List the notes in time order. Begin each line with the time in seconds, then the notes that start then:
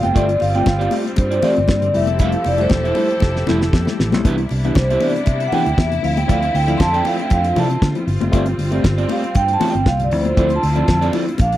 Already playing: G3 C4 F4
0.02 F#1 A3 C4 F4 G5, muted clean electric guitar stroke, closed hi-hat, high conga
0.14 G1 A3 C4 F4 G4 D5, kick, closed hi-hat
0.28 muted clean electric guitar stroke, closed hi-hat
0.40 G1 G2 D3 F5, muted clean electric guitar stroke, open hi-hat, muted conga
0.54 A3 C4 F4 G4 D5 G5, closed hi-hat
0.66 G1 G2 D3 F5, kick, snare, high conga
0.79 C4 F4 G4 D5, closed hi-hat
0.91 A3 C4 F4 G4 D5, open hi-hat, muted conga
1.05 C4 F4, muted clean electric guitar stroke, closed hi-hat
1.16 G2 C5, muted clean electric guitar stroke, kick, closed hi-hat, muted conga
1.30 C4 F4 G4 D5, closed hi-hat
1.43 A3 C4 F4 G4 D5, open hi-hat, muted conga, low conga
1.57 G1, muted clean electric guitar stroke, closed hi-hat
1.68 G2 C4 F4, muted clean electric guitar stroke, kick, snare, high conga
1.82 G2 D3, muted clean electric guitar stroke, closed hi-hat
1.94 F1 F3 G3 A3 E4 G4 A4 E5, open hi-hat
2.07 muted clean electric guitar stroke, closed hi-hat, high conga
2.19 G3 A3 E4 A4 C5 E5 F5, kick, closed hi-hat
2.32 muted clean electric guitar stroke, closed hi-hat
2.44 F1 F3 D5, muted clean electric guitar stroke, open hi-hat, muted conga
2.58 G3 A3 E4 A4 C5 E5, closed hi-hat
2.70 E1 F3, kick, snare, high conga
2.84 E4 A4 C5 E5, closed hi-hat
2.95 G3 A3 E4 A4 C5 E5, open hi-hat, muted conga
3.10 A3 E4, muted clean electric guitar stroke, closed hi-hat
3.20 F1, kick, snare, muted conga
3.36 muted clean electric guitar stroke, snare
3.47 F1 G3 A3 E4 A4 C5 E5, snare, muted conga, low conga
3.62 muted clean electric guitar stroke, snare
3.73 F2, muted clean electric guitar stroke, kick, snare, high conga
3.85 G3 A3 E4, muted clean electric guitar stroke, snare, high conga
3.99 A1 F3, snare
4.12 B1 G3 A3 E4, muted clean electric guitar stroke, snare, high conga
4.25 C2 C3 E3 G3 B3 D4 E4 G4 B4 E5, kick, closed hi-hat
4.38 muted clean electric guitar stroke, closed hi-hat
4.49 C2 C3, muted clean electric guitar stroke, open hi-hat, muted conga
4.64 E3 B3 D4 E4 G4 B4 E5, closed hi-hat
4.75 C2 C3 C5, kick, snare, high conga
4.90 E4 G4 B4 E5, closed hi-hat
5.00 E3 B3 D4 E4 G4 B4 D5 E5, open hi-hat, muted conga
5.15 B3 D4, closed hi-hat
5.26 C3 E5, kick, closed hi-hat, muted conga
5.40 muted clean electric guitar stroke, closed hi-hat
5.48 F#5
5.52 E3 B3 D4 E4 G4 B4 E5 G5, open hi-hat, muted conga, low conga
5.66 D2, muted clean electric guitar stroke, closed hi-hat
5.77 E2 B3 D4 E5, muted clean electric guitar stroke, kick, snare, high conga
5.91 C3, muted clean electric guitar stroke, closed hi-hat
6.03 D2 D3 F3 A3 C4 E4 F4 F5, open hi-hat
6.16 G5, muted clean electric guitar stroke, closed hi-hat, high conga
6.28 D2 F3 C4 E4 F4 A4 D5 F5, kick, closed hi-hat
6.42 muted clean electric guitar stroke, closed hi-hat
6.54 D2 D3 G5, muted clean electric guitar stroke, open hi-hat, muted conga
6.67 F3 C4 E4 F4 A4 D5 F5, closed hi-hat
6.78 F2 D3 A5 C6, muted clean electric guitar stroke, kick, snare, high conga
6.93 C4 F4 A4 D5 G5, closed hi-hat
7.05 F3 C4 E4 F4 A4 D5 F5, open hi-hat, muted conga
7.18 C4 E4 G5, muted clean electric guitar stroke, closed hi-hat
7.30 F2 F5, kick, closed hi-hat, muted conga
7.44 muted clean electric guitar stroke, closed hi-hat
7.55 C3 F3 C4 E4 F4 A4 D5 A5, open hi-hat, muted conga, low conga
7.70 muted clean electric guitar stroke, closed hi-hat
7.82 D3, muted clean electric guitar stroke, kick, snare, high conga
7.95 F3 C4 E4, muted clean electric guitar stroke, closed hi-hat
8.07 G1 G2 D3 G3 C4, open hi-hat
8.21 F#1 A3 C4 F4, muted clean electric guitar stroke, closed hi-hat, high conga
8.32 G1 A3 C4 F4 G4 D5, kick, closed hi-hat
8.46 muted clean electric guitar stroke, closed hi-hat
8.57 G1 G2 D3, muted clean electric guitar stroke, open hi-hat, muted conga
8.71 A3 C4 F4 G4 D5, closed hi-hat
8.83 G1 G2 D3, muted clean electric guitar stroke, kick, snare, high conga
8.98 C4 F4 G4 D5, closed hi-hat
9.09 A3 C4 F4 G4 D5 F5, open hi-hat, muted conga
9.23 C4 F4, muted clean electric guitar stroke, closed hi-hat
9.35 G2 G5, kick, closed hi-hat, muted conga
9.48 muted clean electric guitar stroke, closed hi-hat
9.53 A5
9.60 A3 C4 F4 G4 D5, open hi-hat, muted conga, low conga
9.70 G5, closed hi-hat
9.75 G1, muted clean electric guitar stroke
9.86 C2 C4 F4 F5, muted clean electric guitar stroke, kick, snare, high conga
10.00 G2 D3, muted clean electric guitar stroke, closed hi-hat
10.04 D5
10.11 D2 D3 F3 A3 C4 E4 F4, open hi-hat
10.21 C5, closed hi-hat, high conga
10.26 muted clean electric guitar stroke
10.37 D2 F3 C4 E4 F4 A4 D5, kick, closed hi-hat
10.49 C6, muted clean electric guitar stroke, closed hi-hat
10.56 A5
10.62 D2 D3, muted clean electric guitar stroke, open hi-hat
10.75 F3 C4 E4 F4 A4 D5, closed hi-hat
10.88 F2 D3, muted clean electric guitar stroke, kick, snare, high conga
11.01 C4 F4 A4 D5, closed hi-hat
11.13 F3 C4 E4 F4 A4 D5, open hi-hat, muted conga
11.27 C4 E4, muted clean electric guitar stroke, closed hi-hat
11.38 A#1 G#3 A#3 D4 F5, kick, closed hi-hat, muted conga
11.52 muted clean electric guitar stroke, closed hi-hat